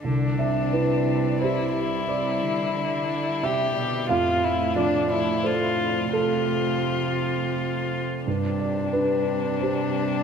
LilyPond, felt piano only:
\new Staff \with { instrumentName = "Felt piano" } { \time 3/4 \key c \major \tempo 4 = 88 << { r8 e''8 b'4 c''4 | d''2 e''4 | f''4 d''4 c''4 | a'2 r4 |
r8 d''8 b'4 c''4 | } \\ { c,4 e'4 <g' d''>4~ | <g' d''>2. | f,4 f4 a'4~ | a'2. |
g,4 d'4 <g' c''>4 | } >> }